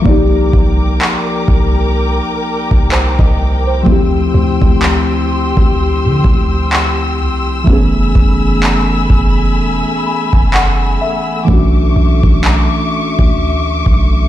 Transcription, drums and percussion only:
0.06 kick
0.53 kick
1.02 clap
1.48 kick
2.71 kick
2.92 clap
3.19 kick
3.86 kick
4.62 kick
4.82 clap
5.57 kick
6.24 kick
6.73 clap
7.67 kick
8.15 kick
8.63 clap
9.10 kick
10.33 kick
10.54 clap
11.48 kick
12.23 kick
12.44 clap
13.19 kick
13.86 kick

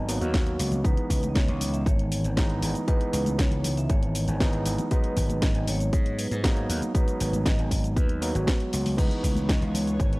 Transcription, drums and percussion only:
0.09 open hi-hat, shaker
0.21 closed hi-hat, shaker
0.34 kick, snare, closed hi-hat, shaker
0.47 closed hi-hat
0.59 open hi-hat, shaker
0.72 closed hi-hat, high conga, low conga, shaker
0.85 kick, closed hi-hat, shaker
0.97 closed hi-hat
1.10 kick, open hi-hat, shaker
1.23 closed hi-hat, high conga, shaker
1.35 kick, snare, closed hi-hat, shaker
1.48 closed hi-hat
1.61 open hi-hat, low conga, shaker
1.74 closed hi-hat, shaker
1.86 kick, closed hi-hat, shaker
1.99 closed hi-hat
2.12 open hi-hat, shaker
2.24 closed hi-hat, shaker
2.37 kick, snare, closed hi-hat, shaker
2.50 closed hi-hat
2.62 open hi-hat, shaker
2.75 closed hi-hat, high conga, shaker
2.88 kick, closed hi-hat, shaker
3.01 closed hi-hat
3.13 open hi-hat, shaker
3.26 closed hi-hat, high conga, shaker
3.39 kick, snare, closed hi-hat, shaker
3.52 closed hi-hat
3.64 open hi-hat, low conga, shaker
3.77 closed hi-hat, shaker
3.90 kick, closed hi-hat, shaker
4.03 closed hi-hat
4.15 open hi-hat, shaker
4.28 closed hi-hat, shaker
4.40 kick, snare, closed hi-hat, shaker
4.53 closed hi-hat
4.66 open hi-hat, shaker
4.78 closed hi-hat, high conga, low conga, shaker
4.91 kick, closed hi-hat, shaker
5.04 closed hi-hat
5.17 kick, open hi-hat, shaker
5.29 closed hi-hat, high conga, shaker
5.42 kick, snare, closed hi-hat, shaker
5.55 closed hi-hat
5.67 open hi-hat, low conga, shaker
5.80 closed hi-hat, shaker
5.93 kick, closed hi-hat, shaker
6.06 closed hi-hat
6.19 open hi-hat, shaker
6.31 closed hi-hat, shaker
6.44 kick, snare, closed hi-hat, shaker
6.57 closed hi-hat
6.70 open hi-hat, shaker
6.82 closed hi-hat, high conga, shaker
6.95 kick, closed hi-hat, shaker
7.08 closed hi-hat, shaker
7.20 open hi-hat, shaker
7.33 closed hi-hat, high conga, shaker
7.46 kick, snare, closed hi-hat, shaker
7.59 closed hi-hat
7.71 kick, open hi-hat, low conga, shaker
7.84 closed hi-hat, shaker
7.96 kick, closed hi-hat, shaker
8.09 closed hi-hat
8.22 open hi-hat, shaker
8.35 closed hi-hat, shaker
8.47 kick, snare, closed hi-hat, shaker
8.60 closed hi-hat
8.73 open hi-hat, shaker
8.85 open hi-hat, high conga, low conga, shaker
8.98 kick, closed hi-hat, crash, shaker
9.11 closed hi-hat
9.23 kick, open hi-hat, shaker
9.36 closed hi-hat, high conga, shaker
9.49 kick, snare, closed hi-hat, shaker
9.62 closed hi-hat
9.74 open hi-hat, low conga, shaker
9.87 closed hi-hat, shaker
10.00 kick, closed hi-hat, shaker
10.13 closed hi-hat

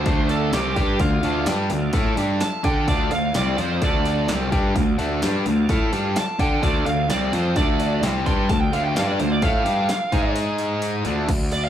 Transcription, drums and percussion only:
0.06 kick, open hi-hat
0.29 open hi-hat
0.53 snare, open hi-hat
0.76 kick, open hi-hat
1.00 kick, open hi-hat
1.23 open hi-hat
1.46 snare, open hi-hat
1.70 open hi-hat
1.93 kick, open hi-hat
2.17 open hi-hat
2.41 snare, open hi-hat
2.64 kick, open hi-hat
2.88 kick, open hi-hat
3.11 open hi-hat
3.34 snare, open hi-hat
3.58 open hi-hat
3.82 kick, open hi-hat
4.05 open hi-hat
4.28 snare, open hi-hat
4.52 kick, open hi-hat
4.76 kick, open hi-hat
4.99 open hi-hat
5.22 snare, open hi-hat
5.46 open hi-hat
5.69 kick, open hi-hat
5.93 open hi-hat
6.16 snare, open hi-hat
6.39 kick, open hi-hat
6.63 kick, open hi-hat
6.86 open hi-hat
7.10 snare, open hi-hat
7.33 open hi-hat
7.56 kick, open hi-hat
7.80 open hi-hat
8.03 snare, open hi-hat
8.26 kick, open hi-hat
8.49 kick, open hi-hat
8.73 open hi-hat
8.96 snare, open hi-hat
9.20 open hi-hat
9.42 kick, open hi-hat
9.66 open hi-hat
9.89 snare, open hi-hat
10.12 kick, open hi-hat
10.36 open hi-hat
10.58 open hi-hat
10.82 open hi-hat
11.05 open hi-hat
11.29 kick, open hi-hat, crash
11.52 open hi-hat

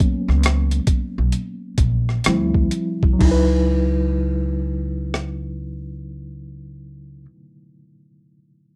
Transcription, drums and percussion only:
0.00 kick
0.30 cross-stick
0.43 cross-stick, closed hi-hat
0.71 closed hi-hat
0.87 kick, closed hi-hat
1.32 closed hi-hat
1.78 kick, closed hi-hat
2.09 cross-stick
2.24 cross-stick, closed hi-hat
2.54 kick
2.71 closed hi-hat
3.03 kick
3.21 kick, crash
5.14 cross-stick

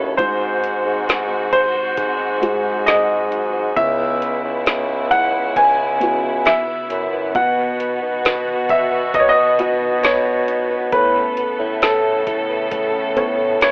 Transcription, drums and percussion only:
0.19 kick, closed hi-hat
0.64 closed hi-hat
1.09 snare, closed hi-hat
1.53 kick, closed hi-hat
1.97 kick, closed hi-hat
2.43 closed hi-hat
2.87 snare, closed hi-hat
3.32 closed hi-hat
3.77 kick, closed hi-hat
4.22 closed hi-hat
4.66 snare, closed hi-hat
5.11 kick, closed hi-hat
5.56 kick, closed hi-hat
6.01 closed hi-hat
6.46 snare, closed hi-hat
6.90 closed hi-hat
7.35 kick, closed hi-hat
7.80 closed hi-hat
8.25 snare, closed hi-hat, tambourine
8.69 kick, closed hi-hat
9.14 kick, closed hi-hat
9.59 closed hi-hat
10.04 snare, closed hi-hat, tambourine
10.48 closed hi-hat
10.92 kick, closed hi-hat
11.37 closed hi-hat
11.82 snare, closed hi-hat, tambourine
12.27 kick, closed hi-hat
12.71 kick, closed hi-hat
13.17 closed hi-hat
13.61 snare, closed hi-hat, tambourine

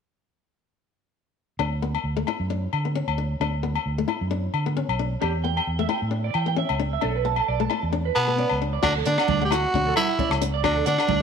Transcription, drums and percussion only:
1.59 low agogo
1.95 low agogo
2.27 low agogo
2.73 low agogo
3.08 low agogo
3.41 low agogo
3.75 low agogo
4.09 low agogo
4.54 low agogo
4.89 low agogo
5.22 low agogo
5.57 low agogo
5.89 low agogo
6.34 low agogo
6.69 low agogo
7.01 low agogo
7.36 low agogo
7.70 low agogo
8.15 low agogo
8.49 low agogo
8.83 kick, cross-stick, crash, muted conga, low agogo
9.06 closed hi-hat
9.18 cross-stick, low agogo
9.28 kick, high conga
9.51 cross-stick, closed hi-hat, low agogo
9.74 kick, muted conga
9.96 cross-stick, closed hi-hat, high conga, low agogo
10.19 kick, high conga
10.31 cross-stick, low agogo
10.42 closed hi-hat, muted conga
10.64 kick, cross-stick, muted conga, low agogo
10.86 closed hi-hat
10.98 cross-stick, low agogo
11.08 kick, high conga

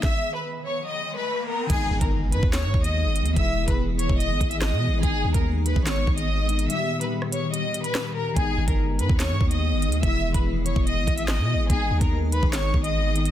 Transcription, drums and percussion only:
0.03 kick, snare
1.70 kick, closed hi-hat, crash
2.01 kick, closed hi-hat
2.32 closed hi-hat
2.43 kick
2.53 snare, clap, closed hi-hat
2.74 kick
2.84 closed hi-hat
3.16 closed hi-hat
3.26 closed hi-hat
3.37 kick, closed hi-hat
3.68 kick, closed hi-hat
3.99 closed hi-hat
4.09 kick
4.20 closed hi-hat
4.41 kick, closed hi-hat
4.51 closed hi-hat
4.62 cross-stick, snare, clap
5.03 kick, closed hi-hat
5.34 kick, closed hi-hat
5.66 closed hi-hat
5.76 kick
5.87 snare, clap, closed hi-hat
6.07 kick
6.18 closed hi-hat
6.49 closed hi-hat
6.59 closed hi-hat
6.70 closed hi-hat
7.01 closed hi-hat
7.22 cross-stick
7.32 closed hi-hat
7.54 closed hi-hat
7.74 closed hi-hat
7.84 closed hi-hat
7.95 cross-stick, snare, clap
8.36 kick, closed hi-hat
8.68 kick, closed hi-hat
8.99 closed hi-hat
9.09 kick
9.20 snare, clap, closed hi-hat
9.41 kick
9.51 closed hi-hat
9.82 closed hi-hat
9.92 closed hi-hat
10.03 kick, closed hi-hat
10.34 kick, closed hi-hat
10.66 closed hi-hat
10.76 kick
10.87 closed hi-hat
11.07 kick, closed hi-hat
11.18 closed hi-hat
11.28 cross-stick, snare, clap
11.70 kick, closed hi-hat
12.01 kick, closed hi-hat
12.32 closed hi-hat
12.43 kick
12.53 snare, clap, closed hi-hat
12.74 kick
12.84 closed hi-hat
13.16 closed hi-hat
13.26 closed hi-hat

